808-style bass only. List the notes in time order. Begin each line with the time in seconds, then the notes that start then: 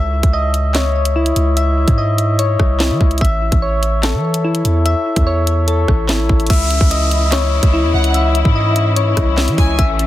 Already playing: C#2
0.23 C#2
1.36 C#2
1.88 G#2
2.60 C2
2.90 E3
3.01 C#2
3.21 A1
3.52 A1
4.14 E3
4.65 E2
5.16 E2
5.88 A1
6.09 G#1
6.19 A1
6.29 A1
6.50 C#2
6.81 C#2
7.63 C#2
7.83 E2
7.94 C#2
8.45 G#2
9.17 C2
9.48 E3
9.58 C#2
9.79 A1